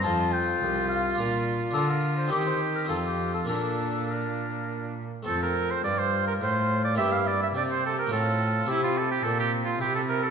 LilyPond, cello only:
\new Staff \with { instrumentName = "Cello" } { \clef bass \time 3/4 \key bes \major \tempo 4 = 106 f,4 c,4 bes,4 | d4 ees4 f,4 | bes,2~ bes,8 r8 | \key f \major f,4 g,4 a,4 |
g,4 c4 a,4 | c4 bes,4 c4 | }